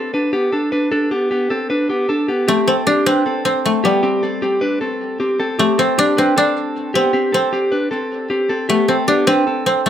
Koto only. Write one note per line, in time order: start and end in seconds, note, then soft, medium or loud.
0.00 0.34 B4 medium
2.48 3.65 A3 loud
2.68 2.74 C4 loud
2.87 5.29 D4 loud
3.06 3.45 C4 loud
3.45 5.79 C4 loud
3.66 5.59 A3 medium
3.85 5.64 G3 medium
5.59 8.48 A3 loud
5.79 6.18 C4 loud
5.99 6.37 D4 loud
6.18 6.95 C4 loud
6.38 8.80 D4 loud
6.95 7.34 C4 loud
7.34 8.88 C4 medium
8.70 9.86 A3 medium
8.88 8.94 C4 medium
9.08 9.89 D4 loud
9.27 9.66 C4 medium
9.66 9.89 C4 loud
9.86 9.89 A3 medium